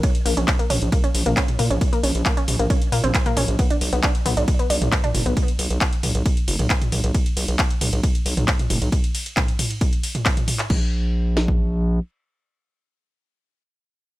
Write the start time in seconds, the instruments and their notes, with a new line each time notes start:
0.03 synth arpeggio sound C#4, kick, closed hi-hat, ride
0.15 closed hi-hat, ride
0.26 analog synth bass A#1, synth arpeggio sound A#3, open hi-hat, ride
0.37 analog synth bass A#1, synth arpeggio sound C#4, closed hi-hat, ride
0.48 kick, clap, closed hi-hat, ride
0.59 synth arpeggio sound A#3, closed hi-hat, ride
0.70 analog synth bass A#1, synth arpeggio sound C#4, mid tom, open hi-hat, ride
0.82 analog synth bass A#1, closed hi-hat, ride
0.92 synth arpeggio sound A#3, kick, closed hi-hat, ride
1.04 synth arpeggio sound C#4, closed hi-hat, ride
1.15 analog synth bass A#1, open hi-hat, ride
1.26 analog synth bass A#1, synth arpeggio sound A#3, closed hi-hat, mid tom, ride
1.37 synth arpeggio sound C#4, kick, clap, closed hi-hat, ride
1.48 closed hi-hat, mid tom, ride
1.59 analog synth bass A#2, synth arpeggio sound A#3, mid tom, open hi-hat, ride
1.70 analog synth bass A#1, synth arpeggio sound C#4, closed hi-hat, ride
1.81 kick, closed hi-hat, ride
1.93 synth arpeggio sound A#3, closed hi-hat, ride
2.03 analog synth bass A#1, synth arpeggio sound C#4, open hi-hat, ride
2.15 analog synth bass A#1, closed hi-hat, ride
2.26 synth arpeggio sound A#3, kick, clap, closed hi-hat, ride
2.37 synth arpeggio sound C#4, closed hi-hat, ride
2.48 analog synth bass A#1, mid tom, open hi-hat, ride
2.59 analog synth bass A#1, synth arpeggio sound A#3, closed hi-hat, ride
2.70 synth arpeggio sound C#4, kick, closed hi-hat, ride
2.82 closed hi-hat, ride
2.92 analog synth bass A#2, synth arpeggio sound A#3, open hi-hat, ride
3.04 analog synth bass A#1, synth arpeggio sound C4, closed hi-hat, mid tom, ride
3.14 kick, clap, closed hi-hat, ride
3.26 synth arpeggio sound A#3, closed hi-hat, mid tom, ride
3.37 analog synth bass A#1, synth arpeggio sound C#4, mid tom, open hi-hat, ride
3.48 analog synth bass A#1, closed hi-hat, ride
3.59 synth arpeggio sound B3, kick, closed hi-hat, ride
3.70 synth arpeggio sound D4, closed hi-hat, ride
3.81 analog synth bass B1, open hi-hat, ride
3.93 analog synth bass B1, synth arpeggio sound B3, closed hi-hat, ride
4.03 synth arpeggio sound D4, kick, clap, closed hi-hat, ride
4.15 closed hi-hat, ride
4.26 analog synth bass B1, synth arpeggio sound B3, mid tom, open hi-hat, ride
4.37 analog synth bass B1, synth arpeggio sound D4, closed hi-hat, ride
4.48 kick, closed hi-hat, ride
4.59 synth arpeggio sound B3, closed hi-hat, ride
4.70 analog synth bass B1, synth arpeggio sound D4, open hi-hat, ride
4.82 analog synth bass B1, closed hi-hat, mid tom, ride
4.92 synth arpeggio sound B3, kick, clap, closed hi-hat, ride
5.04 synth arpeggio sound D4, closed hi-hat, mid tom, ride
5.14 analog synth bass F#1, mid tom, open hi-hat, ride
5.26 analog synth bass B1, synth arpeggio sound B3, closed hi-hat, ride
5.37 kick, closed hi-hat, ride
5.48 closed hi-hat, ride
5.59 analog synth bass B1, open hi-hat, ride
5.70 analog synth bass B1, closed hi-hat, ride
5.81 kick, clap, closed hi-hat, ride
5.93 closed hi-hat, ride
6.03 analog synth bass B1, mid tom, open hi-hat, ride
6.15 analog synth bass B1, closed hi-hat, ride
6.26 kick, closed hi-hat, ride
6.37 closed hi-hat, ride
6.48 analog synth bass F#1, open hi-hat, ride
6.59 analog synth bass B1, closed hi-hat, mid tom, ride
6.70 kick, clap, closed hi-hat, ride
6.82 closed hi-hat, mid tom, ride
6.92 analog synth bass B1, mid tom, open hi-hat, ride
7.04 analog synth bass B1, closed hi-hat, ride
7.14 kick, closed hi-hat, ride
7.26 closed hi-hat, ride
7.37 analog synth bass B1, open hi-hat, ride
7.48 analog synth bass B1, closed hi-hat, ride
7.59 kick, clap, closed hi-hat, ride
7.71 closed hi-hat, ride
7.81 analog synth bass B1, mid tom, open hi-hat, ride
7.93 analog synth bass B1, closed hi-hat, ride
8.03 kick, closed hi-hat, ride
8.15 closed hi-hat, ride
8.26 analog synth bass B1, open hi-hat, ride
8.37 analog synth bass B1, closed hi-hat, mid tom, ride
8.48 kick, clap, closed hi-hat, ride
8.59 closed hi-hat, mid tom, ride
8.70 analog synth bass F#1, mid tom, open hi-hat, ride
8.82 analog synth bass B1, closed hi-hat, ride
8.92 kick, closed hi-hat, ride
9.04 closed hi-hat, ride
9.15 open hi-hat, ride
9.26 closed hi-hat, ride
9.37 kick, clap, closed hi-hat, mid tom, ride
9.48 closed hi-hat, ride
9.59 mid tom, open hi-hat, ride
9.71 closed hi-hat, ride
9.81 kick, closed hi-hat, ride
9.93 closed hi-hat, ride
10.03 open hi-hat, ride
10.15 closed hi-hat, mid tom, ride
10.26 kick, clap, closed hi-hat, ride
10.37 closed hi-hat, mid tom, ride
10.48 mid tom, open hi-hat, ride
10.59 clap, closed hi-hat, ride
10.70 analog synth bass A#1, kick, crash
11.37 snare
11.48 kick